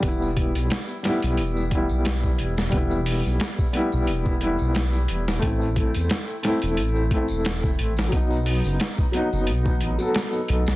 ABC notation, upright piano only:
X:1
M:4/4
L:1/16
Q:"Swing 16ths" 1/4=89
K:Em
V:1 name="Upright piano"
[G,B,E]6 [G,B,E]4 [G,B,E] z4 z | [G,B,E]6 [G,B,E]4 [G,B,E] z4 z | [A,CE]6 [A,CE]4 [A,CE] z4 z | [F,B,^D]6 [F,B,D]4 z [F,B,A] z4 |]